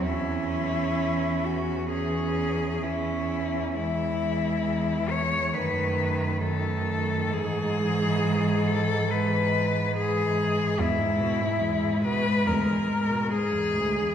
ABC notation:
X:1
M:4/4
L:1/16
Q:1/4=67
K:E
V:1 name="Cello"
E6 F2 G4 E4 | E6 c2 B4 A4 | G6 A2 B4 G4 | [K:Elyd] E6 B2 A4 G4 |]
V:2 name="Cello" clef=bass
C8 C4 C4 | G,8 A,4 A,4 | G,8 G,4 G,4 | [K:Elyd] G,16 |]
V:3 name="Cello" clef=bass
E,8 E,4 E,4 | E,8 D,4 D,4 | E,8 E,4 E,4 | [K:Elyd] E,, G,, B,, G,, E,, G,, B,, G,, =D,, E,, G,, B,, G,, E,, D,, E,, |]
V:4 name="Cello" clef=bass
E,,16- | E,,8 F,,8 | G,,16 | [K:Elyd] E,,4 z4 E,,4 z4 |]